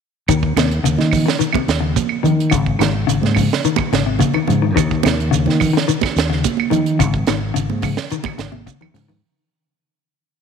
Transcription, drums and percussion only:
0.28 kick medium
0.28 closed hi-hat medium
0.28 high conga soft
0.28 claves medium
0.28 shekere medium
0.43 kick medium
0.57 snare medium
0.57 closed hi-hat medium
0.57 high conga loud
0.57 claves medium
0.57 shekere soft
0.71 closed hi-hat soft
0.85 closed hi-hat medium
0.85 high conga soft
0.85 shekere medium
0.99 snare soft
0.99 high conga medium
1.11 kick medium
1.11 open hi-hat medium
1.11 high conga medium
1.11 low conga medium
1.11 claves medium
1.11 shekere soft
1.28 snare medium
1.40 closed hi-hat medium
1.40 high conga soft
1.40 shekere medium
1.53 kick medium
1.53 high conga medium
1.53 claves medium
1.68 snare medium
1.68 closed hi-hat medium
1.68 shekere soft
1.96 kick medium
1.96 closed hi-hat medium
1.96 high conga medium
1.96 low conga medium
1.96 shekere medium
2.09 claves medium
2.25 closed hi-hat soft
2.25 low conga medium
2.25 shekere soft
2.40 closed hi-hat soft
2.50 kick medium
2.50 closed hi-hat medium
2.50 high conga soft
2.50 claves medium
2.50 shekere medium
2.66 kick medium
2.79 snare medium
2.79 closed hi-hat soft
2.79 high conga loud
2.79 claves medium
2.79 shekere soft
3.09 closed hi-hat medium
3.09 high conga soft
3.09 shekere medium
3.23 snare soft
3.23 high conga medium
3.35 kick medium
3.35 open hi-hat medium
3.35 low conga medium
3.35 claves medium
3.35 shekere soft
3.53 snare medium
3.64 closed hi-hat medium
3.64 high conga soft
3.64 shekere medium
3.76 kick medium
3.76 high conga loud
3.76 claves medium
3.93 snare medium
3.93 closed hi-hat soft
3.93 shekere soft
4.19 kick medium
4.19 closed hi-hat medium
4.19 high conga medium
4.19 low conga medium
4.19 shekere medium
4.34 high conga medium
4.34 claves medium
4.47 closed hi-hat soft
4.47 low conga loud
4.47 shekere soft
4.77 kick loud
4.77 closed hi-hat medium
4.77 high conga soft
4.77 claves medium
4.77 shekere medium
4.91 kick medium
5.03 snare medium
5.03 closed hi-hat soft
5.03 high conga medium
5.03 low conga medium
5.03 claves medium
5.03 shekere soft
5.20 closed hi-hat medium
5.32 closed hi-hat medium
5.32 high conga soft
5.32 shekere medium
5.46 snare soft
5.46 high conga medium
5.60 kick medium
5.60 open hi-hat medium
5.60 high conga medium
5.60 low conga medium
5.60 claves medium
5.60 shekere soft
5.77 snare medium
5.89 closed hi-hat medium
5.89 high conga soft
5.89 shekere medium
6.01 kick medium
6.01 snare soft
6.01 high conga medium
6.01 claves medium
6.16 snare medium
6.16 closed hi-hat medium
6.16 shekere soft
6.32 snare soft
6.44 kick medium
6.44 closed hi-hat medium
6.44 high conga medium
6.44 shekere medium
6.57 high conga medium
6.57 claves medium
6.71 closed hi-hat medium
6.71 low conga medium
6.71 shekere soft
6.86 closed hi-hat medium
7.00 kick medium
7.00 closed hi-hat medium
7.00 high conga soft
7.00 claves medium
7.00 shekere medium
7.14 kick medium
7.26 snare medium
7.26 closed hi-hat medium
7.26 high conga medium
7.26 claves medium
7.26 shekere soft
7.56 closed hi-hat medium
7.56 high conga soft
7.56 shekere medium
7.70 high conga medium
7.82 kick medium
7.82 open hi-hat medium
7.82 low conga medium
7.82 claves medium
7.82 shekere soft
7.97 snare medium
8.10 closed hi-hat medium
8.10 high conga soft
8.10 shekere medium
8.24 kick medium
8.24 high conga medium
8.24 claves medium
8.38 snare medium
8.38 closed hi-hat soft
8.38 shekere soft
8.52 high conga medium
8.67 kick medium
8.67 closed hi-hat medium
8.67 shekere medium
8.81 low conga medium
8.81 claves medium
8.94 open hi-hat medium
8.94 low conga medium
8.94 shekere soft
9.09 low conga loud

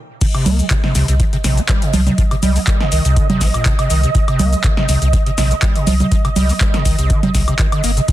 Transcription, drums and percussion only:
0.21 kick loud
0.21 closed hi-hat medium
0.21 crash loud
0.21 shaker soft
0.35 closed hi-hat soft
0.35 high woodblock medium
0.46 open hi-hat loud
0.46 low conga loud
0.46 shaker medium
0.59 closed hi-hat soft
0.59 shaker soft
0.70 kick loud
0.70 clap loud
0.70 closed hi-hat medium
0.70 shaker soft
0.84 snare medium
0.95 snare soft
0.95 open hi-hat loud
0.95 shaker medium
1.08 closed hi-hat medium
1.08 shaker soft
1.20 kick loud
1.20 closed hi-hat medium
1.20 shaker soft
1.33 closed hi-hat soft
1.44 snare medium
1.44 open hi-hat loud
1.44 shaker medium
1.57 closed hi-hat soft
1.57 shaker soft
1.69 kick loud
1.69 clap loud
1.69 closed hi-hat medium
1.69 shaker soft
1.82 closed hi-hat medium
1.93 open hi-hat loud
1.93 low conga loud
1.93 shaker medium
2.07 closed hi-hat soft
2.07 low conga loud
2.07 shaker soft
2.18 kick loud
2.18 closed hi-hat medium
2.18 shaker soft
2.31 closed hi-hat soft
2.31 high woodblock medium
2.43 open hi-hat loud
2.43 low conga loud
2.43 shaker medium
2.56 open hi-hat medium
2.56 shaker soft
2.67 kick loud
2.67 clap loud
2.67 closed hi-hat medium
2.67 shaker soft
2.80 snare medium
2.92 open hi-hat loud
2.92 shaker medium
3.05 closed hi-hat medium
3.05 shaker soft
3.16 kick loud
3.16 closed hi-hat medium
3.16 shaker soft
3.30 closed hi-hat soft
3.30 low conga loud
3.41 kick medium
3.41 snare medium
3.41 open hi-hat loud
3.41 shaker medium
3.54 closed hi-hat soft
3.54 high woodblock medium
3.54 shaker soft
3.66 kick loud
3.66 clap loud
3.66 closed hi-hat medium
3.66 shaker soft
3.79 closed hi-hat medium
3.79 high woodblock medium
3.90 open hi-hat loud
3.90 shaker medium
4.03 closed hi-hat soft
4.03 shaker soft
4.15 kick loud
4.15 closed hi-hat medium
4.15 shaker soft
4.28 closed hi-hat soft
4.28 high woodblock medium
4.39 open hi-hat loud
4.39 low conga loud
4.39 shaker medium
4.53 closed hi-hat soft
4.53 shaker soft
4.64 kick loud
4.64 clap loud
4.64 closed hi-hat medium
4.64 shaker soft
4.77 snare medium
4.89 snare soft
4.89 open hi-hat loud
4.89 shaker medium
5.02 closed hi-hat medium
5.02 shaker soft
5.13 kick loud
5.13 closed hi-hat medium
5.13 shaker soft
5.26 closed hi-hat soft
5.38 snare medium
5.38 open hi-hat loud
5.38 shaker medium
5.51 closed hi-hat soft
5.51 shaker soft
5.62 kick loud
5.62 clap loud
5.62 closed hi-hat medium
5.62 shaker soft
5.76 closed hi-hat medium
5.87 open hi-hat loud
5.87 low conga medium
5.87 shaker medium
6.00 closed hi-hat soft
6.00 low conga loud
6.00 shaker soft
6.12 kick loud
6.12 closed hi-hat medium
6.12 shaker soft
6.25 closed hi-hat soft
6.25 high woodblock medium
6.36 open hi-hat loud
6.36 low conga medium
6.36 shaker medium
6.49 open hi-hat medium
6.49 shaker soft
6.61 kick loud
6.61 clap loud
6.61 closed hi-hat medium
6.61 shaker soft
6.74 snare medium
6.74 closed hi-hat soft
6.85 kick medium
6.85 open hi-hat loud
6.85 shaker medium
6.99 closed hi-hat soft
6.99 shaker soft
7.10 kick loud
7.10 closed hi-hat medium
7.10 shaker soft
7.23 closed hi-hat soft
7.23 low conga medium
7.35 kick medium
7.35 snare medium
7.35 open hi-hat loud
7.35 shaker medium
7.48 closed hi-hat soft
7.48 high woodblock medium
7.48 shaker soft
7.59 kick loud
7.59 clap loud
7.59 closed hi-hat medium
7.59 shaker soft
7.72 closed hi-hat soft
7.72 high woodblock medium
7.84 open hi-hat loud
7.84 shaker medium
7.97 closed hi-hat soft
7.97 shaker soft
8.08 kick loud
8.08 closed hi-hat medium
8.08 shaker soft

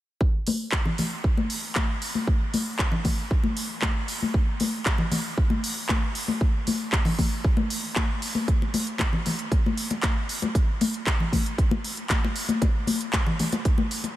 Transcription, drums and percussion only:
0.21 kick loud
0.47 open hi-hat medium
0.47 high conga medium
0.72 kick loud
0.72 clap loud
0.85 low conga medium
0.98 open hi-hat medium
0.98 high conga medium
0.98 low conga medium
1.24 kick loud
1.37 high conga medium
1.50 open hi-hat medium
1.75 kick loud
1.75 clap loud
1.75 high conga medium
2.02 open hi-hat medium
2.15 high conga medium
2.27 kick loud
2.54 open hi-hat loud
2.54 high conga loud
2.79 kick loud
2.79 clap loud
2.92 low conga medium
3.04 kick medium
3.04 open hi-hat loud
3.04 high conga medium
3.04 low conga medium
3.31 kick loud
3.43 high conga medium
3.57 open hi-hat loud
3.82 kick loud
3.82 clap loud
3.82 high conga medium
4.08 open hi-hat loud
4.22 high conga medium
4.34 kick loud
4.60 open hi-hat medium
4.60 high conga loud
4.86 kick loud
4.86 clap loud
4.98 low conga medium
5.11 open hi-hat loud
5.11 high conga medium
5.11 low conga medium
5.38 kick loud
5.50 high conga medium
5.64 open hi-hat loud
5.89 kick loud
5.89 clap loud
5.89 high conga medium
6.15 open hi-hat loud
6.28 high conga medium
6.41 kick loud
6.67 open hi-hat loud
6.67 high conga medium
6.92 kick loud
6.92 clap loud
7.05 open hi-hat medium
7.05 low conga medium
7.19 kick medium
7.19 open hi-hat loud
7.19 high conga medium
7.19 low conga medium
7.45 kick loud
7.57 high conga medium
7.70 open hi-hat loud
7.96 kick loud
7.96 clap loud
7.96 high conga medium
8.22 open hi-hat loud
8.35 high conga medium
8.48 kick loud
8.48 closed hi-hat medium
8.62 muted conga soft
8.74 open hi-hat loud
8.74 high conga medium
8.87 closed hi-hat soft
8.99 kick loud
8.99 clap loud
8.99 closed hi-hat medium
8.99 muted conga medium
9.13 low conga medium
9.26 open hi-hat loud
9.26 high conga medium
9.26 low conga medium
9.39 closed hi-hat soft
9.52 kick loud
9.52 closed hi-hat medium
9.52 muted conga soft
9.66 high conga medium
9.77 open hi-hat loud
9.90 closed hi-hat soft
9.90 muted conga medium
10.03 kick loud
10.03 clap loud
10.03 closed hi-hat medium
10.03 high conga medium
10.29 open hi-hat loud
10.42 closed hi-hat soft
10.42 muted conga medium
10.42 high conga medium
10.55 kick loud
10.55 closed hi-hat medium
10.81 open hi-hat loud
10.81 muted conga medium
10.81 high conga medium
10.94 closed hi-hat medium
11.07 kick loud
11.07 clap loud
11.07 closed hi-hat medium
11.20 low conga medium
11.33 kick medium
11.33 open hi-hat loud
11.33 muted conga soft
11.33 high conga medium
11.33 low conga medium
11.46 closed hi-hat soft
11.58 kick loud
11.58 closed hi-hat medium
11.71 muted conga medium
11.71 high conga medium
11.84 open hi-hat loud
11.97 closed hi-hat soft
12.10 kick loud
12.10 clap loud
12.10 closed hi-hat medium
12.10 high conga medium
12.25 muted conga soft
12.36 open hi-hat loud
12.49 closed hi-hat soft
12.49 high conga medium
12.62 kick loud
12.62 closed hi-hat medium
12.62 muted conga medium
12.87 open hi-hat medium
12.87 high conga medium
13.01 closed hi-hat medium
13.13 kick loud
13.13 clap loud
13.13 closed hi-hat medium
13.13 muted conga soft
13.26 low conga medium
13.39 open hi-hat medium
13.39 high conga medium
13.39 low conga medium
13.52 closed hi-hat medium
13.52 muted conga medium
13.65 kick loud
13.65 closed hi-hat medium
13.78 high conga medium
13.91 open hi-hat loud
14.04 closed hi-hat soft
14.04 muted conga medium

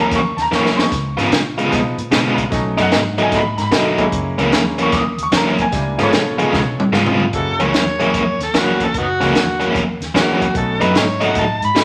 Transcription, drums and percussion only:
0.11 kick loud
0.11 snare soft
0.11 closed hi-hat medium
0.38 snare soft
0.38 closed hi-hat medium
0.52 snare medium
0.66 snare medium
0.79 snare medium
0.92 kick loud
0.92 snare soft
0.92 closed hi-hat medium
1.19 snare soft
1.19 closed hi-hat medium
1.32 snare loud
1.32 closed hi-hat medium
1.59 closed hi-hat medium
1.72 kick medium
1.72 snare soft
1.72 closed hi-hat medium
1.99 closed hi-hat medium
2.12 snare loud
2.12 closed hi-hat medium
2.38 kick medium
2.38 closed hi-hat medium
2.52 kick loud
2.52 snare soft
2.52 closed hi-hat medium
2.78 snare soft
2.78 closed hi-hat medium
2.92 snare loud
2.92 closed hi-hat medium
3.18 closed hi-hat medium
3.32 kick loud
3.32 snare soft
3.32 closed hi-hat medium
3.58 snare soft
3.58 closed hi-hat medium
3.72 snare loud
3.72 closed hi-hat medium
3.98 kick medium
3.98 closed hi-hat medium
4.12 kick loud
4.12 closed hi-hat medium
4.39 closed hi-hat medium
4.52 snare loud
4.52 closed hi-hat medium
4.78 closed hi-hat medium
4.92 kick loud
4.92 snare soft
4.92 closed hi-hat medium
5.19 closed hi-hat medium
5.32 snare loud
5.32 closed hi-hat medium
5.58 kick medium
5.58 closed hi-hat medium
5.72 kick loud
5.72 snare soft
5.72 closed hi-hat medium
5.99 snare soft
5.99 closed hi-hat medium
6.13 snare loud
6.13 closed hi-hat medium
6.39 closed hi-hat medium
6.53 kick loud
6.53 snare medium
6.80 mid tom medium
6.94 snare medium
7.06 floor tom loud
7.20 floor tom medium
7.33 kick loud
7.33 closed hi-hat medium
7.60 closed hi-hat medium
7.74 snare medium
7.74 closed hi-hat medium
8.00 closed hi-hat medium
8.14 kick loud
8.14 closed hi-hat medium
8.41 snare soft
8.41 closed hi-hat medium
8.54 snare loud
8.54 closed hi-hat medium
8.80 kick medium
8.80 closed hi-hat medium
8.94 kick loud
8.94 closed hi-hat medium
9.21 snare soft
9.21 closed hi-hat medium
9.35 snare loud
9.35 closed hi-hat medium
9.61 closed hi-hat medium
9.75 kick loud
9.75 closed hi-hat medium
10.02 snare soft
10.02 closed hi-hat medium
10.16 snare loud
10.16 closed hi-hat medium
10.41 kick medium
10.41 closed hi-hat medium
10.55 kick loud
10.55 closed hi-hat medium
10.81 closed hi-hat medium
10.95 snare loud
10.95 closed hi-hat medium
11.21 closed hi-hat soft
11.35 kick loud
11.35 closed hi-hat medium
11.62 closed hi-hat medium
11.76 snare loud
11.76 closed hi-hat medium

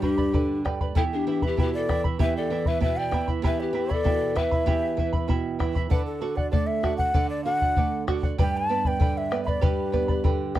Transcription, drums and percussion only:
0.03 bombo low soft
0.18 bombo low soft
0.34 bombo low medium
0.66 bombo rim medium
0.66 bombo low soft
0.81 bombo low medium
0.96 bombo low medium
1.42 bombo low medium
1.58 bombo low medium
1.89 bombo rim medium
1.89 bombo low medium
2.05 bombo low medium
2.20 bombo low medium
2.66 bombo low medium
2.82 bombo low medium
3.12 bombo rim soft
3.12 bombo low soft
3.28 bombo low medium
3.44 bombo low medium
3.91 bombo low medium
4.06 bombo low medium
4.36 bombo rim medium
4.36 bombo low soft
4.52 bombo low medium
4.67 bombo low medium
4.98 bombo low medium
5.13 bombo low medium
5.29 bombo low medium
5.60 bombo rim soft
5.60 bombo low medium
5.76 bombo low medium
5.91 bombo low medium
6.37 bombo low medium
6.53 bombo low medium
6.84 bombo rim soft
6.84 bombo low soft
6.99 bombo low medium
7.14 bombo low medium
7.62 bombo low medium
7.77 bombo low medium
8.08 bombo rim medium
8.08 bombo low soft
8.23 bombo low medium
8.39 bombo low medium
8.85 bombo low medium
9.01 bombo low medium
9.32 bombo rim medium
9.47 bombo low medium
9.63 bombo low medium
9.94 bombo low medium
10.09 bombo low medium
10.25 bombo low medium
10.55 bombo rim soft
10.55 bombo low medium

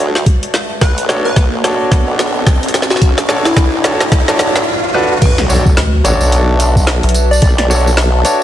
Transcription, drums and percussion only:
0.15 snare medium
0.26 kick loud
0.26 closed hi-hat medium
0.43 closed hi-hat medium
0.54 snare medium
0.54 closed hi-hat medium
0.81 kick loud
0.81 snare medium
0.81 closed hi-hat medium
0.98 closed hi-hat medium
1.09 snare medium
1.36 kick medium
1.36 snare medium
1.36 closed hi-hat medium
1.64 snare medium
1.64 closed hi-hat medium
1.91 kick loud
1.91 snare medium
1.91 closed hi-hat medium
2.19 snare medium
2.19 closed hi-hat medium
2.46 kick loud
2.46 snare medium
2.46 closed hi-hat medium
2.63 closed hi-hat soft
2.68 closed hi-hat medium
2.74 snare medium
2.74 closed hi-hat medium
2.82 snare medium
2.90 snare medium
2.96 snare soft
3.01 kick loud
3.01 closed hi-hat medium
3.18 snare loud
3.18 closed hi-hat medium
3.29 snare medium
3.45 snare medium
3.56 kick loud
3.56 snare loud
3.56 closed hi-hat medium
3.84 snare medium
3.84 closed hi-hat medium
4.00 snare medium
4.11 kick loud
4.11 snare loud
4.11 closed hi-hat medium
4.28 snare medium
4.39 snare loud
4.39 closed hi-hat medium
4.56 snare medium
5.22 kick loud
5.22 closed hi-hat medium
5.22 crash loud
5.22 tambourine soft
5.38 snare medium
5.38 closed hi-hat medium
5.50 tambourine loud
5.66 kick loud
5.66 tambourine medium
5.77 snare loud
5.77 closed hi-hat medium
5.77 tambourine soft
6.05 closed hi-hat medium
6.05 tambourine loud
6.21 tambourine medium
6.32 closed hi-hat medium
6.32 tambourine soft
6.60 closed hi-hat medium
6.60 tambourine medium
6.76 kick medium
6.76 tambourine medium
6.87 snare loud
6.87 closed hi-hat medium
6.87 tambourine soft
7.03 closed hi-hat medium
7.09 closed hi-hat medium
7.15 closed hi-hat medium
7.15 tambourine loud
7.33 tambourine medium
7.42 kick loud
7.42 closed hi-hat medium
7.42 tambourine soft
7.58 snare medium
7.58 closed hi-hat medium
7.71 tambourine medium
7.87 tambourine medium
7.97 snare loud
7.97 closed hi-hat medium
7.97 tambourine soft
8.25 closed hi-hat medium
8.25 tambourine medium

